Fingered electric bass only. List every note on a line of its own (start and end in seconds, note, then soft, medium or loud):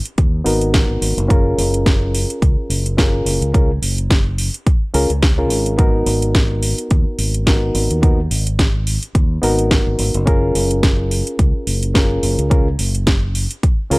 0.18 0.41 D#2 medium
0.46 0.84 G#1 loud
0.90 0.99 G#1 medium
1.02 1.14 G#1 medium
1.17 1.54 F#1 medium
1.58 2.24 F#1 medium
2.42 2.54 C#2 medium
2.70 3.22 F#1 medium
3.25 3.38 F#1 medium
3.41 3.78 C#2 loud
3.82 4.49 F#1 medium
4.94 5.07 C#2 medium
5.10 5.50 C#2 medium
5.50 6.02 G#1 medium
6.06 6.73 G#1 medium
6.91 7.03 D#2 medium
7.18 7.70 G#1 medium
7.75 7.87 G#1 medium
7.91 8.27 D#2 loud
8.31 8.97 G#1 loud
9.15 9.38 D#2 medium
9.43 9.81 G#1 medium
9.87 9.97 G#1 medium
9.99 10.11 G#1 medium
10.15 10.51 F#1 loud
10.55 11.21 F#1 medium
11.39 11.51 C#2 medium
11.67 12.19 F#1 loud
12.23 12.35 F#1 medium
12.39 12.75 C#2 loud
12.79 13.46 F#1 medium
13.91 13.99 C#2 medium